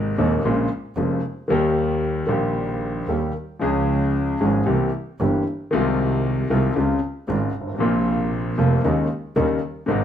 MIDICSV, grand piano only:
0, 0, Header, 1, 2, 480
1, 0, Start_track
1, 0, Tempo, 526778
1, 1367, Time_signature, 4, 2, 24, 8
1, 5214, Tempo, 520382
1, 9200, End_track
2, 0, Start_track
2, 0, Title_t, "Grand piano"
2, 0, Program_c, 0, 0
2, 0, Note_on_c, 0, 32, 94
2, 0, Note_on_c, 0, 44, 96
2, 0, Note_on_c, 0, 48, 80
2, 0, Note_on_c, 0, 56, 72
2, 0, Note_on_c, 0, 58, 70
2, 0, Note_on_c, 0, 63, 83
2, 124, Note_off_c, 0, 48, 0
2, 130, Note_off_c, 0, 56, 0
2, 133, Note_off_c, 0, 44, 0
2, 134, Note_off_c, 0, 32, 0
2, 136, Note_off_c, 0, 58, 0
2, 142, Note_off_c, 0, 63, 0
2, 166, Note_on_c, 0, 27, 86
2, 166, Note_on_c, 0, 48, 77
2, 167, Note_on_c, 0, 39, 87
2, 169, Note_on_c, 0, 63, 77
2, 170, Note_on_c, 0, 56, 66
2, 170, Note_on_c, 0, 58, 73
2, 370, Note_off_c, 0, 27, 0
2, 370, Note_off_c, 0, 39, 0
2, 370, Note_off_c, 0, 48, 0
2, 371, Note_off_c, 0, 56, 0
2, 371, Note_off_c, 0, 63, 0
2, 372, Note_off_c, 0, 58, 0
2, 411, Note_on_c, 0, 49, 70
2, 413, Note_on_c, 0, 34, 86
2, 413, Note_on_c, 0, 56, 64
2, 414, Note_on_c, 0, 46, 85
2, 414, Note_on_c, 0, 58, 64
2, 416, Note_on_c, 0, 65, 76
2, 612, Note_off_c, 0, 34, 0
2, 612, Note_off_c, 0, 49, 0
2, 612, Note_off_c, 0, 56, 0
2, 613, Note_off_c, 0, 46, 0
2, 613, Note_off_c, 0, 58, 0
2, 614, Note_off_c, 0, 65, 0
2, 878, Note_on_c, 0, 49, 68
2, 881, Note_on_c, 0, 58, 52
2, 882, Note_on_c, 0, 29, 75
2, 882, Note_on_c, 0, 41, 67
2, 883, Note_on_c, 0, 56, 59
2, 886, Note_on_c, 0, 65, 63
2, 1084, Note_off_c, 0, 49, 0
2, 1085, Note_off_c, 0, 58, 0
2, 1086, Note_off_c, 0, 29, 0
2, 1086, Note_off_c, 0, 41, 0
2, 1086, Note_off_c, 0, 56, 0
2, 1087, Note_off_c, 0, 65, 0
2, 1347, Note_on_c, 0, 51, 75
2, 1359, Note_on_c, 0, 55, 67
2, 1361, Note_off_c, 0, 51, 0
2, 1368, Note_on_c, 0, 39, 91
2, 1370, Note_on_c, 0, 51, 95
2, 1374, Note_on_c, 0, 58, 66
2, 1383, Note_on_c, 0, 67, 88
2, 2044, Note_off_c, 0, 55, 0
2, 2049, Note_off_c, 0, 39, 0
2, 2050, Note_off_c, 0, 51, 0
2, 2052, Note_off_c, 0, 58, 0
2, 2057, Note_off_c, 0, 67, 0
2, 2064, Note_on_c, 0, 51, 67
2, 2075, Note_on_c, 0, 55, 71
2, 2083, Note_on_c, 0, 34, 90
2, 2084, Note_on_c, 0, 46, 81
2, 2089, Note_on_c, 0, 58, 62
2, 2103, Note_on_c, 0, 67, 79
2, 2763, Note_off_c, 0, 51, 0
2, 2768, Note_off_c, 0, 55, 0
2, 2772, Note_off_c, 0, 34, 0
2, 2773, Note_off_c, 0, 46, 0
2, 2775, Note_off_c, 0, 58, 0
2, 2782, Note_off_c, 0, 67, 0
2, 2812, Note_on_c, 0, 51, 63
2, 2814, Note_on_c, 0, 55, 57
2, 2816, Note_on_c, 0, 39, 60
2, 2817, Note_on_c, 0, 58, 52
2, 2817, Note_on_c, 0, 67, 61
2, 3016, Note_off_c, 0, 55, 0
2, 3017, Note_off_c, 0, 39, 0
2, 3017, Note_off_c, 0, 51, 0
2, 3018, Note_off_c, 0, 58, 0
2, 3018, Note_off_c, 0, 67, 0
2, 3275, Note_on_c, 0, 53, 69
2, 3284, Note_on_c, 0, 56, 71
2, 3292, Note_on_c, 0, 49, 84
2, 3294, Note_on_c, 0, 37, 90
2, 3298, Note_on_c, 0, 61, 75
2, 3312, Note_on_c, 0, 68, 87
2, 3971, Note_off_c, 0, 53, 0
2, 3975, Note_off_c, 0, 56, 0
2, 3980, Note_off_c, 0, 37, 0
2, 3980, Note_off_c, 0, 49, 0
2, 3983, Note_off_c, 0, 61, 0
2, 3990, Note_off_c, 0, 68, 0
2, 4012, Note_on_c, 0, 53, 63
2, 4013, Note_on_c, 0, 44, 83
2, 4015, Note_on_c, 0, 56, 62
2, 4015, Note_on_c, 0, 61, 71
2, 4017, Note_on_c, 0, 32, 74
2, 4017, Note_on_c, 0, 68, 76
2, 4216, Note_off_c, 0, 44, 0
2, 4216, Note_off_c, 0, 53, 0
2, 4217, Note_off_c, 0, 56, 0
2, 4217, Note_off_c, 0, 61, 0
2, 4218, Note_off_c, 0, 32, 0
2, 4218, Note_off_c, 0, 68, 0
2, 4244, Note_on_c, 0, 52, 71
2, 4245, Note_on_c, 0, 58, 60
2, 4246, Note_on_c, 0, 67, 74
2, 4247, Note_on_c, 0, 36, 82
2, 4247, Note_on_c, 0, 60, 60
2, 4249, Note_on_c, 0, 48, 79
2, 4451, Note_off_c, 0, 52, 0
2, 4452, Note_off_c, 0, 58, 0
2, 4453, Note_off_c, 0, 36, 0
2, 4453, Note_off_c, 0, 60, 0
2, 4453, Note_off_c, 0, 67, 0
2, 4454, Note_off_c, 0, 48, 0
2, 4736, Note_on_c, 0, 58, 51
2, 4737, Note_on_c, 0, 52, 63
2, 4739, Note_on_c, 0, 31, 72
2, 4741, Note_on_c, 0, 60, 50
2, 4743, Note_on_c, 0, 43, 63
2, 4745, Note_on_c, 0, 67, 64
2, 4938, Note_off_c, 0, 52, 0
2, 4938, Note_off_c, 0, 58, 0
2, 4939, Note_off_c, 0, 31, 0
2, 4941, Note_off_c, 0, 43, 0
2, 4941, Note_off_c, 0, 60, 0
2, 4942, Note_off_c, 0, 67, 0
2, 5201, Note_on_c, 0, 51, 81
2, 5216, Note_on_c, 0, 56, 67
2, 5220, Note_on_c, 0, 36, 94
2, 5220, Note_on_c, 0, 48, 95
2, 5228, Note_on_c, 0, 60, 66
2, 5236, Note_on_c, 0, 65, 92
2, 5890, Note_off_c, 0, 51, 0
2, 5898, Note_off_c, 0, 56, 0
2, 5900, Note_off_c, 0, 36, 0
2, 5900, Note_off_c, 0, 48, 0
2, 5904, Note_off_c, 0, 60, 0
2, 5908, Note_off_c, 0, 65, 0
2, 5932, Note_on_c, 0, 51, 69
2, 5937, Note_on_c, 0, 48, 81
2, 5937, Note_on_c, 0, 56, 65
2, 5938, Note_on_c, 0, 36, 84
2, 5938, Note_on_c, 0, 60, 67
2, 5938, Note_on_c, 0, 65, 84
2, 6135, Note_off_c, 0, 51, 0
2, 6137, Note_off_c, 0, 36, 0
2, 6137, Note_off_c, 0, 48, 0
2, 6137, Note_off_c, 0, 56, 0
2, 6137, Note_off_c, 0, 60, 0
2, 6138, Note_off_c, 0, 65, 0
2, 6169, Note_on_c, 0, 37, 73
2, 6169, Note_on_c, 0, 49, 85
2, 6172, Note_on_c, 0, 56, 60
2, 6175, Note_on_c, 0, 60, 64
2, 6175, Note_on_c, 0, 65, 80
2, 6373, Note_off_c, 0, 37, 0
2, 6375, Note_off_c, 0, 49, 0
2, 6375, Note_off_c, 0, 56, 0
2, 6376, Note_off_c, 0, 60, 0
2, 6377, Note_off_c, 0, 65, 0
2, 6645, Note_on_c, 0, 56, 55
2, 6648, Note_on_c, 0, 49, 55
2, 6650, Note_on_c, 0, 44, 70
2, 6651, Note_on_c, 0, 32, 78
2, 6653, Note_on_c, 0, 60, 52
2, 6655, Note_on_c, 0, 65, 70
2, 6851, Note_off_c, 0, 56, 0
2, 6853, Note_off_c, 0, 49, 0
2, 6854, Note_off_c, 0, 32, 0
2, 6854, Note_off_c, 0, 44, 0
2, 6855, Note_off_c, 0, 60, 0
2, 6856, Note_off_c, 0, 65, 0
2, 6952, Note_on_c, 0, 31, 56
2, 7012, Note_on_c, 0, 32, 59
2, 7013, Note_off_c, 0, 31, 0
2, 7073, Note_off_c, 0, 32, 0
2, 7077, Note_on_c, 0, 33, 67
2, 7117, Note_on_c, 0, 48, 81
2, 7128, Note_on_c, 0, 53, 75
2, 7134, Note_on_c, 0, 34, 94
2, 7134, Note_on_c, 0, 46, 91
2, 7136, Note_off_c, 0, 33, 0
2, 7141, Note_on_c, 0, 58, 77
2, 7152, Note_on_c, 0, 65, 86
2, 7809, Note_off_c, 0, 48, 0
2, 7814, Note_off_c, 0, 53, 0
2, 7817, Note_off_c, 0, 34, 0
2, 7817, Note_off_c, 0, 46, 0
2, 7821, Note_off_c, 0, 58, 0
2, 7826, Note_off_c, 0, 65, 0
2, 7848, Note_on_c, 0, 53, 70
2, 7850, Note_on_c, 0, 48, 80
2, 7852, Note_on_c, 0, 58, 73
2, 7853, Note_on_c, 0, 41, 85
2, 7854, Note_on_c, 0, 29, 87
2, 7854, Note_on_c, 0, 65, 83
2, 8052, Note_off_c, 0, 53, 0
2, 8053, Note_off_c, 0, 48, 0
2, 8054, Note_off_c, 0, 58, 0
2, 8055, Note_off_c, 0, 29, 0
2, 8055, Note_off_c, 0, 41, 0
2, 8055, Note_off_c, 0, 65, 0
2, 8091, Note_on_c, 0, 49, 71
2, 8093, Note_on_c, 0, 51, 76
2, 8094, Note_on_c, 0, 39, 80
2, 8094, Note_on_c, 0, 56, 67
2, 8094, Note_on_c, 0, 58, 58
2, 8097, Note_on_c, 0, 63, 77
2, 8294, Note_off_c, 0, 49, 0
2, 8295, Note_off_c, 0, 39, 0
2, 8295, Note_off_c, 0, 51, 0
2, 8295, Note_off_c, 0, 56, 0
2, 8295, Note_off_c, 0, 58, 0
2, 8297, Note_off_c, 0, 63, 0
2, 8568, Note_on_c, 0, 49, 64
2, 8568, Note_on_c, 0, 51, 81
2, 8568, Note_on_c, 0, 55, 63
2, 8570, Note_on_c, 0, 39, 81
2, 8571, Note_on_c, 0, 58, 52
2, 8571, Note_on_c, 0, 63, 69
2, 8772, Note_off_c, 0, 49, 0
2, 8772, Note_off_c, 0, 51, 0
2, 8772, Note_off_c, 0, 55, 0
2, 8773, Note_off_c, 0, 39, 0
2, 8773, Note_off_c, 0, 58, 0
2, 8774, Note_off_c, 0, 63, 0
2, 9032, Note_on_c, 0, 48, 85
2, 9046, Note_on_c, 0, 51, 66
2, 9048, Note_on_c, 0, 32, 90
2, 9052, Note_on_c, 0, 44, 90
2, 9057, Note_on_c, 0, 56, 69
2, 9069, Note_on_c, 0, 63, 86
2, 9200, Note_off_c, 0, 32, 0
2, 9200, Note_off_c, 0, 44, 0
2, 9200, Note_off_c, 0, 48, 0
2, 9200, Note_off_c, 0, 51, 0
2, 9200, Note_off_c, 0, 56, 0
2, 9200, Note_off_c, 0, 63, 0
2, 9200, End_track
0, 0, End_of_file